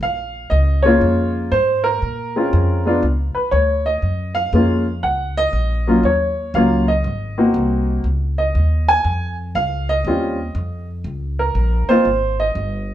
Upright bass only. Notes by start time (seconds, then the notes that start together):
0.01 A#1
0.51 C#2
1.01 F2
1.52 G#2
2.02 A#2
2.53 F2
3.03 C#2
3.35 muted upright bass stroke
3.52 D2
4.02 F#2
4.53 F2
5.03 C#2
5.53 A#1
6.03 D#2
6.54 C#2
7.04 G#1
7.54 C2
8.04 C#2
8.55 D#2
9.04 F2
9.55 C#2
10.05 D#2
10.55 F2
11.04 C#2
11.55 A#1
11.88 muted upright bass stroke
12.05 G#1
12.55 G1